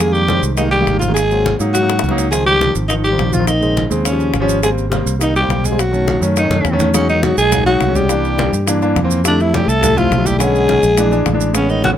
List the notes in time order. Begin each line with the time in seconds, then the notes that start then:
Already playing: F2
0.00 D#3 G3 G#3 A#3 G#4, high bongo, high conga, maracas
0.12 G3 G4, high conga, maracas
0.28 D#3 G3 G#3 C4, high bongo, high conga, maracas
0.43 C2, high conga, maracas
0.56 D#3 G3 G#3 A#3 D#4, high bongo, high conga, maracas
0.70 G3 G4, maracas
0.80 D#3 G3 G#3 A#3
0.87 G#1, high bongo, low bongo, high conga, maracas
0.99 F3 F4, high conga, maracas
1.08 D#3 G3 G#3 A#3
1.14 G#3 G#4, high bongo, high conga, maracas
1.30 F#3 A#3 C4, high conga, maracas
1.46 high bongo, high conga, maracas
1.59 G#2 F#3 A#3 D#4, high bongo, high conga, maracas
1.72 F#3 F#4, high bongo, high conga, maracas
1.81 F#3 A#3 D#4
1.89 high bongo, high conga, maracas
1.99 C#2, high bongo
2.04 high conga, maracas
2.09 F#3 A#3 D#4, low bongo
2.18 low bongo, high conga, maracas
2.30 D#3 F3 G#3 C4 G#4, high bongo, maracas
2.45 G3 G4, high conga, maracas
2.60 D#3 F3 C4, high bongo, high conga, maracas
2.75 G#1, high conga, maracas
2.88 D#3 F3 D#4, high bongo, high conga, maracas
3.04 G3 G4, high conga, maracas
3.11 D#3 F3 C4
3.18 A#1, high bongo, low bongo, high conga, maracas
3.33 F3 F4, high conga, maracas
3.39 D#3 F3 C4
3.47 D#3 D#4, high bongo, high conga, maracas
3.61 C#3 G#3 C4, high conga, maracas
3.77 high bongo, high conga, maracas
3.90 D#2 C#3 G#3 C4, high bongo, high conga, maracas
4.05 C#3 C#4, high bongo, high conga, maracas
4.11 F3 G3 C#4
4.20 high bongo, high conga, maracas
4.34 G#1, high bongo, low bongo, high conga, maracas
4.40 F3 G3 C#4
4.49 high bongo, high conga, maracas
4.62 G3 G#3 A#3 C4 G#4, high bongo, high conga, maracas
4.78 high conga, maracas
4.90 G3 A#3 C4, high bongo, high conga, maracas
5.06 C2, high conga, maracas
5.19 D#3 G3 A#3 D#4, high bongo, high conga, maracas
5.35 G3 G4, high conga, maracas
5.41 G3 A#3 C4
5.49 B1, high bongo, low bongo, high conga, maracas
5.64 G#3 G#4, high conga, maracas
5.70 G3 A#3 C4
5.79 F#3 F#4, high bongo, maracas
5.91 D#3 A3 C#4, high conga, maracas
6.08 high bongo, high conga, maracas
6.21 F#2 D#3 A3 C#4, high bongo, high conga, maracas
6.36 D#3 D#4, high bongo, high conga, maracas
6.42 D#3 A3 C#4
6.50 F#2, high bongo, high conga, maracas
6.65 E2, high bongo, low bongo, high conga, maracas
6.72 D#3 A3 C#4
6.79 high bongo, low conga, maracas
6.93 C#3 F#3 G#3 C#4 D#4, high bongo, high conga, maracas
7.09 D#3 D#4, high conga, maracas
7.23 F#3 F#4, high bongo, high conga, maracas
7.38 B1 G#3 G#4, high conga, maracas
7.50 F#3 G#3 D#4, high bongo, high conga, low conga, maracas
7.65 F#3 G#3 D#4 F#4, high conga, maracas
7.81 C2, high bongo, low bongo, high conga, maracas
7.87 F#3 G#3 C#4
7.95 G3 G4, high conga, maracas
8.09 E3 A#3 D4, high bongo, high conga, maracas
8.24 high conga, maracas
8.38 high bongo, high conga, maracas
8.53 G2, high bongo, high conga, maracas
8.66 E3 A#3 D4, high bongo, high conga, maracas
8.81 E3 A#3 D4, high bongo, high conga, maracas
8.96 F2, high bongo, low bongo, high conga, maracas
9.03 E3 A#3 C4
9.11 high bongo, high conga, maracas
9.24 D3 G3 A3 D4 E4, high bongo, high conga, maracas
9.40 E3 E4, high conga, maracas
9.54 G3 G4, high bongo, high conga, maracas
9.67 C2 A3 A4, high conga, maracas
9.81 G3 A3 E4, high bongo, high conga, low conga, maracas
9.96 F3 G3 A3 E4 F4, high conga, low conga, maracas
10.11 B1, high bongo, low bongo, high conga, maracas
10.18 G3 A3 E4
10.26 G3 G4, high conga, maracas
10.39 D3 G#3 B3 C#4 G#4, high bongo, maracas
10.55 high conga, maracas
10.69 high bongo, high conga, maracas
10.83 A#1, high bongo, high conga, maracas
10.97 E3 G#3 D4, high bongo, high conga, maracas
11.11 E3 G#3 D4, high bongo, high conga, maracas
11.26 A1, high bongo, low bongo, high conga, maracas
11.32 E3 G#3 D4
11.40 high bongo, high conga, maracas
11.53 C#3 G#3 B3 C#4, high bongo, high conga, maracas
11.69 D#3 D#4, high conga, maracas
11.83 F#3 F#4, high bongo, high conga, maracas